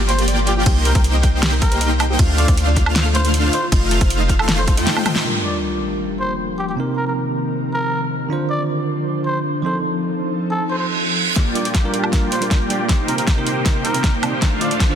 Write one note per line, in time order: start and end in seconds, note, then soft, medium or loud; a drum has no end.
0.00 0.64 G1 loud
0.00 0.65 F3 medium
0.00 0.64 A#3 medium
0.00 2.16 A#3 medium
0.00 0.64 F4 medium
0.00 0.64 G4 medium
0.00 0.65 G4 loud
0.00 0.64 D5 medium
0.00 0.64 G5 medium
0.09 0.22 C5 loud
0.09 closed hi-hat medium
0.19 0.22 A#4 medium
0.19 closed hi-hat medium
0.28 0.33 D5 medium
0.28 closed hi-hat medium
0.47 0.53 G4 medium
0.47 0.55 D5 medium
0.47 closed hi-hat medium
0.57 0.60 F4 medium
0.57 0.63 G4 medium
0.66 0.93 C2 loud
0.66 2.18 C3 medium
0.66 0.93 A#3 medium
0.66 0.93 D#4 medium
0.66 2.18 D#4 loud
0.66 0.93 G4 medium
0.66 0.69 G4 medium
0.66 0.93 C5 medium
0.66 0.93 G5 loud
0.66 kick loud
0.66 closed hi-hat medium
0.66 ride medium
0.85 0.92 A#4 medium
0.85 0.89 A#5 loud
0.85 closed hi-hat medium
0.95 2.17 C2 loud
0.95 2.17 A#3 medium
0.95 2.17 D#4 medium
0.95 2.17 G4 medium
0.95 1.01 A#4 medium
0.95 2.17 C5 medium
0.95 0.98 C5 medium
0.95 2.17 G5 medium
0.95 kick loud
0.95 closed hi-hat medium
1.04 closed hi-hat medium
1.14 1.19 D#5 loud
1.23 1.32 G5 medium
1.23 kick medium
1.23 closed hi-hat medium
1.43 1.48 G4 medium
1.43 snare loud
1.43 closed hi-hat medium
1.43 ride soft
1.53 1.56 A#4 loud
1.62 1.91 A#4 loud
1.62 kick loud
1.62 closed hi-hat medium
1.72 1.75 C5 medium
1.72 closed hi-hat medium
1.81 1.86 D#5 medium
1.81 closed hi-hat medium
2.00 2.08 D#5 medium
2.00 closed hi-hat medium
2.00 high woodblock medium
2.10 2.13 G4 medium
2.19 2.46 D2 loud
2.19 3.52 D3 medium
2.19 2.46 A3 medium
2.19 3.52 C4 medium
2.19 2.46 D4 medium
2.19 3.52 F4 medium
2.19 2.46 F4 medium
2.19 2.22 F4 medium
2.19 2.46 C5 medium
2.19 2.46 F5 loud
2.19 kick loud
2.19 closed hi-hat medium
2.19 ride medium
2.38 2.51 D5 medium
2.38 2.41 A5 loud
2.38 closed hi-hat medium
2.48 3.50 D2 medium
2.48 3.52 A3 medium
2.48 3.52 D4 medium
2.48 3.52 F4 medium
2.48 3.52 C5 medium
2.48 2.51 C5 medium
2.48 3.52 F5 medium
2.48 kick loud
2.48 closed hi-hat medium
2.57 closed hi-hat medium
2.67 2.72 D5 loud
2.77 2.85 F5 medium
2.77 kick medium
2.77 closed hi-hat medium
2.86 high woodblock medium
2.96 3.01 F4 medium
2.96 snare loud
2.96 closed hi-hat medium
2.96 ride soft
3.06 3.09 A4 loud
3.15 3.28 C5 loud
3.15 closed hi-hat medium
3.25 3.28 C5 medium
3.25 closed hi-hat medium
3.34 3.39 D5 medium
3.34 closed hi-hat medium
3.53 5.23 D#3 medium
3.53 5.23 A3 medium
3.53 5.23 F4 medium
3.53 3.66 C5 medium
3.53 3.61 D#5 medium
3.53 closed hi-hat medium
3.63 3.66 F4 medium
3.72 3.99 F1 medium
3.72 3.99 A3 medium
3.72 3.99 D#4 medium
3.72 3.99 F4 medium
3.72 3.99 C5 medium
3.72 3.99 F5 loud
3.72 kick loud
3.72 closed hi-hat medium
3.72 ride soft
3.91 3.94 A5 loud
3.91 closed hi-hat medium
4.01 4.79 F1 loud
4.01 4.75 A3 medium
4.01 4.75 D#4 medium
4.01 4.75 F4 medium
4.01 4.75 C5 medium
4.01 4.04 C5 medium
4.01 4.75 F5 loud
4.01 4.75 F5 medium
4.01 kick loud
4.01 closed hi-hat medium
4.10 closed hi-hat medium
4.20 4.25 D#5 loud
4.29 4.37 F5 medium
4.29 kick medium
4.29 closed hi-hat medium
4.39 4.52 A4 medium
4.39 high woodblock medium
4.49 4.54 F4 medium
4.49 snare loud
4.49 closed hi-hat medium
4.49 ride soft
4.58 4.61 A4 loud
4.58 4.64 C5 loud
4.68 4.74 C5 medium
4.68 kick loud
4.68 closed hi-hat medium
4.77 4.87 F2 loud
4.77 5.04 A3 medium
4.77 5.03 D#4 medium
4.77 5.04 F4 medium
4.77 5.03 C5 medium
4.77 4.82 D#5 medium
4.77 5.04 G5 loud
4.77 closed hi-hat medium
4.87 4.92 A5 medium
4.87 snare medium
4.87 closed hi-hat medium
4.97 high tom medium
4.97 high woodblock medium
5.06 5.23 A3 medium
5.06 5.23 D#4 medium
5.06 5.23 F4 medium
5.06 5.09 F4 medium
5.06 5.23 C5 medium
5.06 5.23 G5 medium
5.06 closed hi-hat medium
5.06 mid tom medium
5.06 high woodblock medium
5.16 5.21 F4 medium
5.16 snare medium
5.23 6.76 F3 medium
5.23 6.75 G3 medium
5.23 6.76 A#3 medium
5.23 6.75 D4 medium
5.23 6.76 F4 medium
5.23 6.76 G4 medium
5.23 sub drop medium
5.27 6.77 A#4 medium
5.44 5.57 D5 medium
6.20 6.34 C5 medium
6.59 6.65 G4 medium
6.68 6.74 G4 medium
6.76 8.27 C3 medium
6.76 8.29 D#3 medium
6.76 8.28 C4 medium
6.76 8.29 C4 medium
6.76 8.29 D#4 medium
6.76 8.29 A#4 medium
6.97 7.03 A#4 medium
7.07 7.13 A#4 medium
7.73 8.02 A#4 medium
8.29 9.61 D3 medium
8.29 11.33 F3 medium
8.29 9.62 D4 medium
8.29 9.63 D4 medium
8.29 9.63 F4 medium
8.29 9.63 C5 medium
8.33 9.63 C5 medium
8.50 8.63 D5 medium
9.26 9.39 C5 medium
9.62 11.33 F3 medium
9.62 11.34 C4 medium
9.62 11.35 D#4 medium
9.62 11.34 D#4 medium
9.62 11.35 A4 medium
9.62 9.78 C5 medium
10.50 10.63 A4 medium
10.60 reverse cymbal medium
10.70 10.76 C5 medium
10.79 10.85 C5 medium
11.36 12.88 G3 medium
11.36 11.63 A#3 medium
11.36 11.63 F4 medium
11.36 12.88 F4 medium
11.36 11.63 G4 medium
11.36 12.88 A#4 medium
11.36 11.63 D5 medium
11.36 11.63 G5 loud
11.36 kick medium
11.36 snare soft
11.36 closed hi-hat medium
11.54 11.65 G3 medium
11.54 11.65 D4 medium
11.54 11.65 F4 medium
11.54 11.66 A#4 medium
11.54 11.69 D5 medium
11.54 closed hi-hat medium
11.65 12.87 A#3 medium
11.65 12.87 F4 medium
11.65 12.87 G4 medium
11.65 12.87 D5 medium
11.65 12.87 G5 medium
11.65 closed hi-hat medium
11.75 kick medium
11.75 snare soft
11.75 closed hi-hat medium
11.83 12.10 G3 medium
11.83 12.10 D4 medium
11.83 12.11 F4 medium
11.83 12.11 A#4 medium
11.94 closed hi-hat medium
12.04 high woodblock medium
12.12 12.27 G3 medium
12.12 12.28 D4 medium
12.12 12.28 F4 medium
12.12 12.28 A#4 medium
12.12 kick medium
12.12 snare soft
12.12 closed hi-hat medium
12.32 12.45 C5 medium
12.32 closed hi-hat medium
12.41 12.56 G3 medium
12.41 12.56 D4 medium
12.41 12.57 F4 medium
12.41 12.57 A#4 medium
12.41 closed hi-hat medium
12.51 kick loud
12.51 snare soft
12.51 closed hi-hat medium
12.69 12.79 G3 medium
12.69 12.79 D4 medium
12.69 12.80 F4 medium
12.69 12.76 G4 medium
12.69 12.80 D5 medium
12.69 closed hi-hat medium
12.80 12.86 G4 medium
12.89 13.16 A#3 medium
12.89 14.41 A#3 medium
12.89 13.16 D#4 medium
12.89 14.41 D#4 medium
12.89 13.16 G4 medium
12.89 13.16 C5 medium
12.89 14.95 C5 medium
12.89 13.16 G5 medium
12.89 kick medium
12.89 snare soft
12.89 closed hi-hat medium
13.07 13.17 C3 medium
13.07 13.18 C4 medium
13.07 13.18 D#4 medium
13.07 13.15 A#4 medium
13.07 13.18 A#4 medium
13.07 closed hi-hat medium
13.18 14.40 A#3 medium
13.18 14.40 D#4 medium
13.18 14.40 G4 medium
13.18 13.24 A#4 medium
13.18 14.40 C5 medium
13.18 14.40 G5 medium
13.18 closed hi-hat medium
13.27 kick loud
13.27 snare soft
13.27 closed hi-hat medium
13.36 13.63 C3 medium
13.36 13.63 C4 medium
13.36 13.64 D#4 medium
13.36 13.64 A#4 loud
13.47 closed hi-hat medium
13.64 13.80 C3 medium
13.64 13.80 C4 medium
13.64 13.81 D#4 medium
13.64 13.81 A#4 medium
13.64 kick medium
13.64 snare medium
13.64 closed hi-hat medium
13.85 14.14 A#4 medium
13.85 closed hi-hat medium
13.93 14.09 C3 medium
13.93 14.09 C4 medium
13.93 14.10 D#4 medium
13.93 14.10 A#4 medium
13.93 closed hi-hat medium
14.04 kick loud
14.04 snare medium
14.04 closed hi-hat medium
14.22 14.32 C3 medium
14.22 14.32 C4 medium
14.22 14.33 D#4 medium
14.22 14.33 D5 medium
14.22 closed hi-hat medium
14.22 high woodblock medium
14.42 14.95 F3 medium
14.42 14.69 A3 medium
14.42 14.69 D4 medium
14.42 14.95 D4 medium
14.42 14.69 F4 medium
14.42 14.69 C5 medium
14.42 14.69 F5 loud
14.42 kick medium
14.42 snare medium
14.42 closed hi-hat medium
14.60 14.70 D3 medium
14.60 14.71 D4 medium
14.60 14.71 F4 medium
14.60 14.71 C5 medium
14.60 14.74 D5 medium
14.60 closed hi-hat medium
14.71 14.95 A3 medium
14.71 14.95 D4 medium
14.71 14.95 F4 medium
14.71 14.95 C5 medium
14.71 14.95 F5 medium
14.71 closed hi-hat medium
14.80 kick loud
14.80 snare medium
14.80 closed hi-hat medium
14.89 14.95 D3 medium
14.89 14.95 D4 medium
14.89 14.95 F4 medium
14.89 14.95 C5 medium